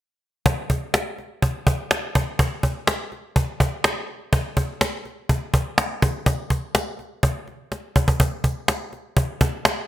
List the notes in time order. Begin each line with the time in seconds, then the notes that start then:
0.46 cajon bass
0.70 cajon bass
0.94 cajon slap
1.19 cajon slap
1.42 cajon bass
1.67 cajon bass
1.91 cajon slap
2.15 cajon bass
2.39 cajon bass
2.63 cajon bass
2.87 cajon slap
3.12 cajon slap
3.36 cajon bass
3.60 cajon bass
3.84 cajon slap
4.33 cajon bass
4.57 cajon bass
4.81 cajon slap
5.05 cajon slap
5.29 cajon bass
5.54 cajon bass
5.78 cajon slap
6.02 cajon bass
6.26 cajon bass
6.50 cajon bass
6.75 cajon slap
6.99 cajon slap
7.23 cajon bass
7.48 cajon slap
7.72 cajon slap
7.96 cajon bass
8.08 cajon bass
8.20 cajon bass
8.44 cajon bass
8.68 cajon slap
8.93 cajon slap
9.17 cajon bass
9.41 cajon bass
9.65 cajon slap